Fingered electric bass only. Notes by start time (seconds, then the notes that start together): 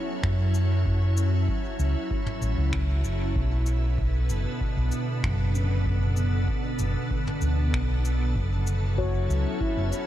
0.23 F#2
1.79 C#2
2.42 A1
2.58 C#2
3.04 F#1
3.36 B1
4.30 F#1
4.77 B1
5.23 F#1
6.79 F#1
7.42 D2
7.73 B1
8.35 F#1
9.29 C#2
9.77 F#1